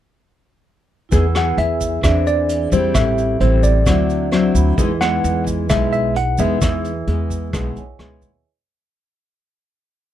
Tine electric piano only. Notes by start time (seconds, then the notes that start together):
1.37 F#5
1.58 E5
2.04 E5
2.27 D5
2.73 C5
2.95 E5
3.41 C5
3.63 D5
5.01 F#5
5.70 E5
5.93 E5
6.17 F#5
6.40 E5